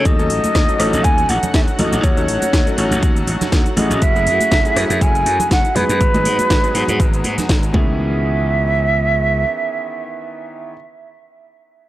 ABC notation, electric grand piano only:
X:1
M:4/4
L:1/16
Q:"Swing 16ths" 1/4=121
K:C#m
V:1 name="Electric grand piano"
[F,A,CDA] [F,A,CDA]4 [F,A,CDA] [F,A,CDA]8 [F,A,CDA]2- | [F,A,CDA] [F,A,CDA]4 [F,A,CDA] [F,A,CDA]8 [F,A,CEG]2- | [F,A,CEG] [F,A,CEG]4 [F,A,CEG] [F,A,CEG]8 [F,G,B,DG]2- | [F,G,B,DG] [F,G,B,DG]4 [F,G,B,DG] [F,G,B,DG]8 [D,E,B,CG]2- |
[D,E,B,CG]16- | [D,E,B,CG]16 |]